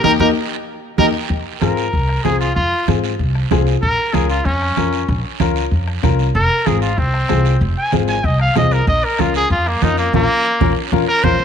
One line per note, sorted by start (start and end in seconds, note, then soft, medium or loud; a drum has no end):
0.03 0.16 D#2 medium
0.03 0.14 A#3 medium
0.03 0.15 A#3 loud
0.03 0.14 D#4 medium
0.03 0.14 G4 medium
0.03 0.12 A#4 loud
0.03 bombo low loud
0.03 high conga loud
0.03 long guiro medium
0.19 0.32 D#2 medium
0.19 0.30 A#3 medium
0.19 0.31 A#3 loud
0.19 0.30 D#4 medium
0.19 0.31 D#4 medium
0.19 0.30 G4 medium
0.19 0.30 G4 loud
0.19 0.28 A#4 medium
0.19 bombo low medium
0.19 high conga medium
0.19 long guiro medium
0.98 1.10 D#2 loud
0.98 1.09 A#3 medium
0.98 1.09 D#4 medium
0.98 1.09 G4 medium
0.98 1.06 A#4 loud
0.98 bombo low medium
0.98 high conga loud
0.98 long guiro loud
1.30 1.43 F2 medium
1.30 bombo low medium
1.30 high conga soft
1.30 long guiro medium
1.61 1.87 G#2 medium
1.61 1.84 C4 medium
1.61 1.84 F4 medium
1.61 1.84 G#4 medium
1.61 2.23 A#4 medium
1.61 bombo rim medium
1.61 high conga medium
1.61 short guiro medium
1.77 short guiro medium
1.93 2.19 C2 medium
1.93 bombo low medium
1.93 high conga soft
1.93 long guiro medium
2.09 bombo rim medium
2.24 2.50 C2 medium
2.24 2.47 C4 medium
2.24 2.47 F4 medium
2.24 2.39 G#4 medium
2.24 2.47 G#4 medium
2.24 bombo rim medium
2.24 high conga medium
2.24 short guiro medium
2.40 2.55 F4 medium
2.40 short guiro medium
2.55 2.69 F2 loud
2.55 2.87 F4 loud
2.55 bombo low medium
2.55 high conga soft
2.55 long guiro medium
2.88 3.13 G#2 medium
2.88 3.10 C4 medium
2.88 3.10 F4 medium
2.88 3.11 G#4 medium
2.88 bombo rim medium
2.88 high conga medium
2.88 short guiro medium
3.04 short guiro medium
3.19 3.45 C2 medium
3.19 bombo low medium
3.19 high conga soft
3.19 long guiro medium
3.35 bombo rim medium
3.51 3.77 C2 medium
3.51 3.73 C4 medium
3.51 3.73 F4 medium
3.51 3.73 G#4 loud
3.51 bombo low medium
3.51 bombo rim medium
3.51 high conga medium
3.51 low conga medium
3.51 short guiro medium
3.67 short guiro medium
3.82 3.95 A#1 loud
3.82 4.15 A#4 loud
3.82 bombo low medium
3.82 high conga soft
3.82 long guiro medium
4.13 4.39 C#2 medium
4.13 4.36 C#4 medium
4.13 4.36 F4 medium
4.13 4.29 G#4 medium
4.13 4.36 A#4 medium
4.13 bombo rim medium
4.13 high conga medium
4.13 short guiro medium
4.29 4.46 F4 medium
4.29 short guiro medium
4.45 4.71 F2 medium
4.45 5.07 C#4 medium
4.45 bombo low medium
4.45 high conga soft
4.45 long guiro medium
4.62 bombo rim medium
4.77 5.03 F2 medium
4.77 4.99 C#4 medium
4.77 5.00 F4 medium
4.77 5.00 A#4 medium
4.77 bombo rim medium
4.77 high conga medium
4.77 short guiro medium
4.93 short guiro medium
5.08 5.21 A#1 loud
5.08 bombo low medium
5.08 high conga soft
5.08 long guiro medium
5.40 5.65 C#2 medium
5.40 5.63 C#4 medium
5.40 5.63 F4 medium
5.40 5.63 A#4 medium
5.40 bombo rim medium
5.40 high conga medium
5.40 short guiro medium
5.56 short guiro medium
5.71 5.97 F2 medium
5.71 bombo low medium
5.71 high conga soft
5.71 long guiro medium
5.88 bombo rim medium
6.03 6.29 C2 medium
6.03 6.25 C#4 medium
6.03 6.26 F4 medium
6.03 6.26 A#4 medium
6.03 bombo low medium
6.03 bombo rim medium
6.03 high conga medium
6.03 low conga medium
6.03 short guiro medium
6.19 short guiro medium
6.35 6.48 F1 loud
6.35 6.68 A#4 loud
6.35 bombo low medium
6.35 high conga soft
6.35 long guiro medium
6.66 6.92 G#1 loud
6.66 6.88 C4 medium
6.66 6.89 F4 medium
6.66 6.81 G#4 medium
6.66 6.89 G#4 medium
6.66 bombo rim medium
6.66 high conga medium
6.66 short guiro medium
6.82 7.00 F4 medium
6.82 short guiro medium
6.98 7.23 C2 medium
6.98 7.59 C4 loud
6.98 bombo low medium
6.98 high conga soft
6.98 long guiro medium
7.14 bombo rim medium
7.29 7.55 C2 loud
7.29 7.52 C4 medium
7.29 7.52 F4 medium
7.29 7.52 G#4 medium
7.29 bombo rim medium
7.29 high conga medium
7.29 short guiro medium
7.45 short guiro medium
7.61 7.74 F1 loud
7.61 bombo low medium
7.61 high conga soft
7.61 long guiro medium
7.77 7.92 G#5 loud
7.92 8.18 G#1 loud
7.92 8.15 C4 medium
7.92 8.15 F4 medium
7.92 8.15 G#4 medium
7.92 bombo rim medium
7.92 high conga medium
7.92 short guiro medium
8.08 8.27 G#5 medium
8.08 short guiro medium
8.24 8.49 C2 medium
8.24 8.40 D#5 medium
8.24 bombo low medium
8.24 high conga soft
8.24 long guiro medium
8.40 8.56 F5 medium
8.40 bombo rim medium
8.55 8.81 C2 loud
8.55 8.78 C4 medium
8.55 8.78 F4 medium
8.55 8.78 G#4 medium
8.55 8.74 D#5 medium
8.55 bombo low medium
8.55 bombo rim medium
8.55 high conga medium
8.55 low conga medium
8.55 short guiro medium
8.71 8.87 A#4 medium
8.71 short guiro medium
8.87 9.00 A#1 loud
8.87 9.06 D#5 medium
8.87 bombo low medium
8.87 high conga soft
8.87 long guiro medium
9.04 9.22 A#4 medium
9.18 9.44 C#2 medium
9.18 9.41 C#4 medium
9.18 9.41 F4 medium
9.18 9.35 F4 medium
9.18 9.41 A#4 medium
9.18 bombo rim medium
9.18 high conga medium
9.18 short guiro medium
9.34 9.51 G#4 loud
9.34 short guiro medium
9.50 9.76 F2 medium
9.50 9.69 F4 medium
9.50 bombo low medium
9.50 high conga soft
9.50 long guiro medium
9.66 9.85 A#3 medium
9.66 bombo rim medium
9.82 10.07 F2 loud
9.82 10.05 C#4 medium
9.82 9.98 D#4 loud
9.82 10.05 F4 medium
9.82 10.05 A#4 medium
9.82 bombo rim medium
9.82 high conga medium
9.82 short guiro medium
9.97 10.13 A#3 loud
9.97 short guiro medium
10.13 10.25 A#1 loud
10.13 10.76 A#3 loud
10.13 10.24 C#4 medium
10.13 10.24 F4 loud
10.13 10.24 A#4 medium
10.13 bombo low medium
10.13 high conga loud
10.13 long guiro medium
10.60 10.73 A#1 loud
10.60 10.71 C#4 loud
10.60 10.71 F4 medium
10.60 10.71 A#4 medium
10.60 bombo low loud
10.60 high conga loud
10.60 long guiro loud
10.92 11.04 A#1 medium
10.92 11.02 C#4 loud
10.92 11.03 F4 loud
10.92 11.03 A#4 loud
10.92 bombo low medium
10.92 high conga loud
10.92 long guiro loud
11.08 11.25 A#4 loud
11.23 11.36 A#1 loud
11.23 11.34 C#4 loud
11.23 11.35 F4 medium
11.23 11.34 A#4 medium
11.23 11.45 C5 loud
11.23 bombo low loud
11.23 high conga loud
11.23 long guiro medium
11.40 11.45 F1 medium
11.40 high conga soft
11.40 long guiro medium